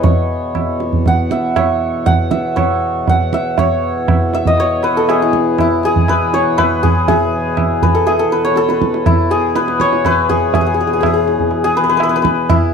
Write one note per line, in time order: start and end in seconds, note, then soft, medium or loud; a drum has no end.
0.00 3.57 E2 medium
0.00 3.57 B2 medium
0.00 0.79 G#4 medium
0.00 2.51 B4 medium
0.00 1.56 C#5 medium
0.00 1.38 D#5 medium
0.00 0.91 F#5 medium
0.00 0.52 G#5 medium
0.00 tabla tin loud
0.00 tabla ge medium
0.55 tabla na medium
0.55 tabla ge medium
0.80 tabla te medium
0.93 tabla ge soft
1.06 2.06 F#5 medium
1.06 tabla tin medium
1.06 tabla ge medium
1.31 2.30 E5 medium
1.31 tabla ke medium
1.56 2.56 C#5 medium
1.56 tabla na medium
1.56 tabla ge medium
2.06 3.09 F#5 medium
2.06 tabla tin medium
2.06 tabla ge medium
2.31 3.34 E5 medium
2.31 tabla ke medium
2.56 3.58 C#5 medium
2.56 tabla na medium
2.56 tabla ge medium
3.08 5.23 F#5 medium
3.08 tabla tin medium
3.08 tabla ge medium
3.33 4.34 E5 medium
3.33 tabla ke medium
3.58 12.74 E2 medium
3.58 12.74 B2 medium
3.58 4.59 C#5 medium
3.58 tabla tin loud
3.58 tabla ge loud
4.08 tabla na medium
4.08 tabla ge medium
4.33 4.53 E5 medium
4.33 tabla te medium
4.46 5.28 D#5 medium
4.46 tabla ge medium
4.58 6.33 C#5 loud
4.58 tabla tin medium
4.83 6.09 B4 medium
4.83 tabla na medium
4.97 5.15 A4 medium
5.09 5.85 G#4 medium
5.09 tabla na medium
5.22 5.60 E4 medium
5.33 tabla ke medium
5.59 9.06 E4 medium
5.59 tabla na medium
5.59 tabla ge medium
5.83 6.83 G#4 loud
5.83 tabla te medium
5.96 tabla ge medium
6.08 6.57 B4 medium
6.08 tabla na medium
6.08 tabla ge medium
6.34 8.44 C#5 loud
6.34 tabla te medium
6.58 7.82 B4 loud
6.58 tabla na medium
6.58 tabla ge medium
6.83 7.08 G#4 medium
6.83 tabla ge medium
7.08 8.01 G#4 loud
7.08 tabla tin loud
7.08 tabla ge loud
7.57 tabla na medium
7.57 tabla ge medium
7.82 8.32 B4 medium
7.82 tabla ge medium
7.95 8.13 A4 medium
8.07 8.25 G#4 medium
8.07 tabla tin medium
8.19 8.57 A4 medium
8.32 8.69 B4 medium
8.45 9.80 C#5 medium
8.56 9.37 A4 medium
8.56 tabla te medium
8.69 9.55 B4 medium
8.69 tabla te medium
8.82 tabla ke medium
8.94 tabla te medium
9.06 12.49 E4 medium
9.06 tabla na medium
9.06 tabla ge medium
9.31 10.29 G#4 loud
9.31 tabla te medium
9.55 10.05 B4 medium
9.55 tabla te medium
9.68 tabla te medium
9.80 12.37 C#5 loud
9.80 tabla ke medium
9.93 tabla te medium
10.05 11.76 B4 loud
10.05 tabla na medium
10.05 tabla ge medium
10.29 10.54 G#4 loud
10.29 tabla ge medium
10.54 10.61 G#4 medium
10.54 tabla tin loud
10.54 tabla ge loud
10.61 10.66 G#4 medium
10.66 10.74 G#4 medium
10.74 10.80 G#4 medium
10.81 10.87 G#4 medium
10.87 10.93 G#4 soft
10.93 11.00 G#4 medium
11.01 11.06 G#4 medium
11.01 tabla na medium
11.01 tabla ge medium
11.06 11.13 G#4 medium
11.14 11.64 G#4 medium
11.28 tabla te medium
11.39 tabla ge medium
11.51 tabla tin medium
11.64 12.74 G#4 loud
11.77 11.83 B4 medium
11.84 11.89 B4 medium
11.89 11.97 B4 medium
11.97 12.03 B4 medium
11.97 tabla na medium
12.03 12.09 B4 medium
12.09 12.15 B4 medium
12.16 12.22 B4 medium
12.22 12.74 B4 medium
12.22 tabla ke medium
12.49 12.74 E4 medium
12.49 tabla na medium
12.49 tabla ge medium